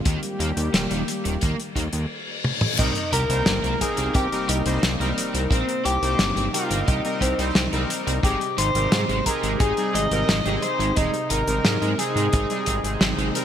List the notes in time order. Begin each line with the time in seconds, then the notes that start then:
Already playing: D#3
0.05 D#2 D#3 G3 A#3 G4, kick, closed hi-hat
0.23 closed hi-hat
0.40 D#2 A#3, closed hi-hat
0.57 D#2, closed hi-hat
0.74 D#1 D#3, snare, closed hi-hat
0.91 D#1 D#3, closed hi-hat
1.08 closed hi-hat
1.25 D#1 D#3, closed hi-hat
1.41 D#2 A#3, kick, closed hi-hat, reverse cymbal
1.60 closed hi-hat
1.76 D#2 A#3, kick, closed hi-hat
1.93 D#2, closed hi-hat
2.44 high tom
2.61 mid tom
2.78 C2 C3 G3 A#3 C4 D#4 A#4 D#5, kick, closed hi-hat, crash, sub drop
2.95 closed hi-hat
3.12 C2 G4 A#4 A#5, closed hi-hat
3.29 C2 G3 C4 D#4 C5, closed hi-hat
3.46 G1 C4, snare, closed hi-hat
3.64 C2 C4, closed hi-hat
3.81 A#3 C4 D#4 G#4 A#4 G#5, kick, closed hi-hat
3.97 C2 C4, closed hi-hat
4.15 C2 G4 G5, kick, closed hi-hat
4.32 G3 C4 D#4 A#4, closed hi-hat
4.49 C2 D#4 G4 D#5, closed hi-hat
4.66 C2 G3 C4 D#4 C5, closed hi-hat
4.83 C2 C4, snare, closed hi-hat
5.00 C2 G3 C4 D#4 A#4, closed hi-hat
5.18 closed hi-hat
5.34 C2 C4, closed hi-hat
5.51 A#1 G3 C4 D#4 A#4 C5, kick, closed hi-hat
5.69 closed hi-hat
5.85 C2 G4 G5, closed hi-hat
6.02 C2 G3 C4 D#4 C5, closed hi-hat
6.19 G1 C4, snare, closed hi-hat
6.36 G1 C4, closed hi-hat
6.54 G3 C4 D#4 F4 A#4 F5, closed hi-hat
6.70 G1 C4, closed hi-hat
6.88 C2 D#4 G4 D#5, kick, closed hi-hat
7.05 G3 C4 D#4 A#4, closed hi-hat
7.21 C2 C4 G4 C5, kick, closed hi-hat
7.39 C2 G3 C4 D#4 C5, closed hi-hat
7.55 C2 C4, snare, closed hi-hat
7.73 C2 G3 C4 D#4 A#4, closed hi-hat
7.90 closed hi-hat
8.07 C2 C4, closed hi-hat
8.23 G#1 G3 G#3 C4 D#4 G4 G#4 G5, kick, closed hi-hat
8.41 closed hi-hat
8.58 G#1 D#4 C5 C6, closed hi-hat
8.75 G#1 G3 C4 D#4 A#4, closed hi-hat
8.92 G#2 G#3, snare, closed hi-hat
9.09 G#1 G#3, closed hi-hat
9.26 C4 D#4 G4 G#4 A#4 A#5, kick, closed hi-hat
9.43 G#1 G#3, closed hi-hat
9.60 G#1 D#4 G#4 G#5, kick, closed hi-hat
9.77 G3 C4 D#4 G#4, closed hi-hat
9.94 G#1 D#4 D#5 D#6, closed hi-hat
10.11 G#1 G3 C4 D#4 A#4, closed hi-hat
10.28 G#1 G#3, snare, closed hi-hat
10.45 G#1 G#3 C4 D#4 G4 G#4, closed hi-hat
10.62 C5 C6, closed hi-hat
10.79 G#1 G#3, closed hi-hat
10.96 D#1 G3 G#3 C4 D#4 G#4 D#5, kick, closed hi-hat
11.14 closed hi-hat
11.30 G#1 D#4 A#4 A#5, closed hi-hat
11.47 G#1 G3 C4 D#4 A#4, closed hi-hat
11.65 G#2 G#3, snare, closed hi-hat
11.82 G#2 G#3, closed hi-hat
11.99 G#3 C4 D#4 G#4 G#5, closed hi-hat
12.16 G#2 G#3, closed hi-hat
12.33 G#1 D#4, kick, closed hi-hat
12.50 G3 C4 D#4 G#4, closed hi-hat
12.66 G#1 D#4, kick, closed hi-hat
12.84 G#1 G#3 C4 D#4 G#4, closed hi-hat
13.01 G#1 G#3, snare, closed hi-hat
13.18 G#1 G#3, closed hi-hat
13.35 G3 C4 D#4 A#4, closed hi-hat